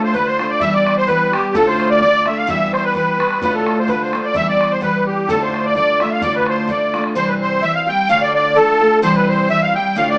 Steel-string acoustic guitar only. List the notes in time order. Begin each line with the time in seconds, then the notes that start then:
Already playing: D2 A2 D3 A3 D4 F4
0.14 D3 A3 D4 F4
0.39 D3 A3 D4 F4
0.61 E3 G3 B3 G4
1.07 E3 G3 B3 G4
1.32 G3 B3 G4
1.55 D2 A2 D3 A3 D4 F4
2.01 D3 A3 D4 F4
2.25 D3 A3 D4 F4
2.47 E3 G3 B3 G4
2.94 E3 G3 B3 G4
3.18 G3 B3 G4
3.42 D2 A2 D3 A3 D4 F4
3.88 D3 A3 D4 F4
4.13 D3 A3 D4 F4
4.34 E3 G3 B3 G4
4.81 E3 G3 B3 G4
5.29 D2 A2 D3 A3 D4 F4
5.75 D3 A3 D4 F4
6.01 D3 A3 D4 F4
6.22 D2 A2 D3 A3 D4 F4
6.67 D3 A3 D4 F4
6.94 D3 A3 D4 F4
7.15 C3 E3 G3 C4 G4
7.61 E3 G3 C4 G4
7.87 G3 C4 G4
8.08 D2 A2 D3 A3 D4 F4
8.56 D3 A3 D4 F4
8.80 D3 A3 D4 F4
9.02 C3 E3 G3 C4 G4
9.49 E3 G3 C4 G4
9.74 G3 C4 G4
9.95 D2 A2 D3 A3 D4 F4